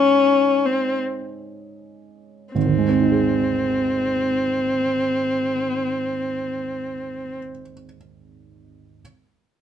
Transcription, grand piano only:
0.00 2.51 G#2 soft
0.00 2.51 G#3 soft
0.00 2.51 C#4 soft
2.55 7.39 G#1 soft
2.66 7.50 D#2 soft
2.78 7.62 G#3 soft
2.89 7.73 C4 soft
3.00 7.84 D#4 soft
3.12 7.96 G#4 soft

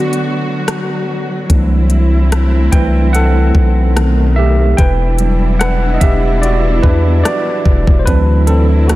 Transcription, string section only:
0.00 1.46 D3 medium
0.00 3.92 F#3 medium
0.00 1.46 B3 medium
0.00 1.46 F#4 medium
1.50 3.94 A3 medium
1.50 4.75 C4 medium
1.50 3.94 E4 medium
3.96 4.78 B2 medium
3.96 4.78 D#3 medium
3.96 4.78 A3 medium
4.78 8.04 E3 medium
4.78 8.04 B3 medium
4.78 8.04 D4 medium
4.78 8.04 E4 medium
8.07 8.96 D3 medium
8.07 8.96 F#3 medium
8.07 8.96 C4 medium
8.07 8.96 E4 medium

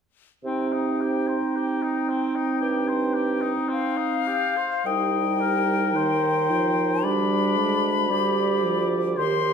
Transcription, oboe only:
0.45 0.74 C4 soft
0.73 1.02 D#4 soft
1.01 1.30 G4 soft
1.28 1.58 C5 soft
1.56 1.84 G4 soft
1.82 2.11 D#4 soft
2.10 2.38 C4 soft
2.36 2.60 D#4 soft
2.61 2.90 G4 soft
2.88 3.16 C5 soft
3.14 3.43 G4 soft
3.41 3.71 D#4 soft
3.69 3.99 C4 soft
3.97 4.29 D#4 soft
4.27 4.58 G4 soft
4.57 4.85 C5 soft
4.85 5.42 D#5 soft
5.41 5.97 A#4 soft
5.96 7.05 C5 soft
7.04 7.93 D5 soft
8.10 9.19 D5 soft
9.17 9.53 C5 soft

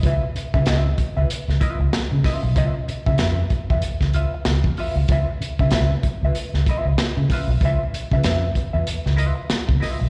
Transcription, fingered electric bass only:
0.03 0.18 C#2 loud
0.35 muted fingered electric bass stroke medium
0.54 0.64 C#3 loud
0.67 0.91 C#2 medium
1.17 1.27 C#2 loud
1.29 muted fingered electric bass stroke medium
1.48 1.58 C#2 loud
1.80 1.89 C#2 loud
2.12 2.21 C#3 loud
2.43 2.56 B1 loud
2.56 2.71 C#2 loud
2.89 muted fingered electric bass stroke medium
3.07 3.16 C#3 loud
3.20 3.44 F2 medium
3.70 3.80 E2 loud
3.82 muted fingered electric bass stroke medium
4.00 4.25 C#2 medium
4.46 4.60 C#2 medium
4.64 4.74 E2 loud
4.96 5.05 C#2 medium
5.09 5.23 C#2 loud
5.41 muted fingered electric bass stroke medium
5.59 5.73 C#3 loud
5.71 5.96 C#2 loud
6.23 6.32 C#2 medium
6.35 muted fingered electric bass stroke soft
6.54 6.63 C#2 loud
6.85 6.95 C#2 medium
7.17 7.27 C#3 loud
7.47 7.57 B1 medium
7.61 7.76 C#2 loud
7.93 muted fingered electric bass stroke soft
8.12 8.21 C#3 loud
8.24 8.49 F2 medium
8.74 8.84 E2 loud
8.87 muted fingered electric bass stroke medium
9.06 9.30 C#2 loud
9.51 muted fingered electric bass stroke soft
9.69 9.79 C#2 medium
10.01 10.09 B1 loud

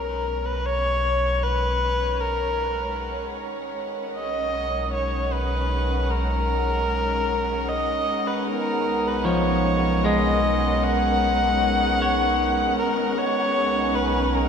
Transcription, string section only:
0.00 14.48 D#3 medium
0.00 14.48 G#3 medium
0.00 0.33 B3 medium
0.00 14.48 C#4 medium
0.00 8.46 C#5 medium
0.45 14.48 F#5 medium
9.68 13.18 A#4 medium
13.64 14.48 G#4 medium

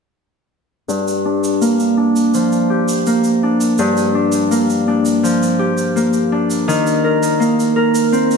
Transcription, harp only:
0.88 3.78 G2 medium
1.25 1.97 D4 medium
1.61 3.06 A#3 medium
1.97 3.43 D4 medium
2.34 5.22 F3 medium
2.70 5.59 G4 medium
3.07 4.50 A#3 medium
3.43 4.14 D4 medium
3.79 6.73 G2 medium
4.15 4.87 D4 medium
4.51 5.95 A#3 medium
4.88 6.32 D4 medium
5.23 6.73 F3 medium
5.59 8.37 G4 medium
5.96 7.39 A#3 medium
6.32 8.37 D4 medium
6.68 8.37 D#3 medium
7.04 7.76 A#4 medium
7.40 8.37 A#3 medium
7.76 8.37 A#4 medium
8.12 8.37 C4 medium

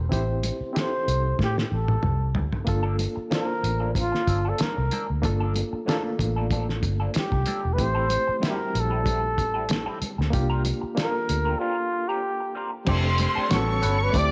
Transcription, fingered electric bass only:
0.12 0.50 A1 medium
0.61 muted fingered electric bass stroke soft
1.08 1.32 C2 medium
1.39 1.64 A2 medium
1.72 1.96 A1 medium
2.03 2.36 C2 medium
2.36 2.49 D2 medium
2.68 3.05 G1 medium
3.17 muted fingered electric bass stroke soft
3.64 4.12 A1 medium
4.27 4.52 G1 medium
4.61 muted fingered electric bass stroke soft
4.78 4.89 C2 medium
5.10 5.21 D2 medium
5.24 5.61 G1 medium
5.73 muted fingered electric bass stroke soft
6.20 6.85 A1 medium
6.83 7.07 G1 medium
7.16 muted fingered electric bass stroke soft
7.32 7.43 C2 medium
7.65 7.76 E1 medium
7.79 8.16 A1 medium
8.29 muted fingered electric bass stroke soft
8.75 9.39 A#1 medium
9.39 9.87 A1 medium
10.02 muted fingered electric bass stroke soft
10.19 10.30 D2 medium
10.33 10.71 C2 loud
10.83 muted fingered electric bass stroke soft
11.30 11.54 D2 medium
12.88 13.25 F1 loud
13.37 muted fingered electric bass stroke soft
13.52 13.86 A1 medium
13.84 14.08 G1 medium
14.14 14.32 D2 medium

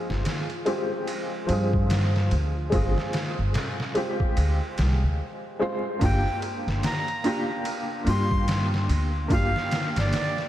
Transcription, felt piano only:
0.00 0.62 G#3 medium
0.00 0.63 C4 medium
0.00 0.64 F4 medium
0.00 0.65 G#4 medium
0.66 1.45 G#3 medium
0.66 1.45 C4 medium
0.66 1.45 F4 medium
0.66 1.46 G4 medium
1.47 2.67 F3 medium
1.47 2.68 C4 medium
1.47 2.69 F4 medium
1.52 2.70 G#4 medium
2.70 3.91 G#3 medium
2.70 3.92 C4 medium
2.70 3.92 F4 medium
2.75 3.93 G#4 medium
3.95 4.74 G#3 medium
3.95 4.74 C4 medium
3.95 4.74 F4 medium
3.95 4.75 G4 medium
5.59 5.97 G#3 medium
5.59 5.97 C4 medium
5.59 5.98 F4 medium
5.59 5.98 C5 loud
5.99 7.20 A#3 medium
5.99 7.21 D4 medium
5.99 7.22 F4 medium
6.05 7.22 G4 medium
7.24 8.03 A#3 medium
7.24 8.03 D4 medium
7.24 8.03 F4 medium
7.24 8.04 G4 medium
8.04 9.25 A#3 medium
8.04 9.26 D4 medium
8.04 9.27 F4 medium
8.09 9.27 G4 medium
9.28 10.48 A#3 medium
9.28 10.48 D4 medium
9.28 10.48 F4 medium
9.33 10.48 G4 medium

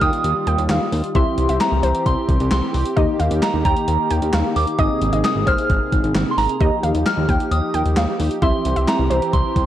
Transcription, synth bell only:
0.02 0.88 D#6 loud
1.16 1.58 C6 loud
1.61 2.07 A#5 loud
2.06 2.50 C6 loud
2.51 2.83 C6 medium
3.42 3.64 A#5 medium
3.65 4.59 A#5 medium
4.56 4.80 D6 medium
4.79 5.23 D#6 loud
5.25 5.48 D#6 loud
5.47 5.89 F6 loud
6.31 6.38 C6 medium
6.38 6.80 A#5 loud
7.06 7.53 F6 loud
7.51 8.16 D#6 loud
8.42 8.89 C6 loud
8.88 9.35 A#5 loud
9.33 9.66 C6 loud

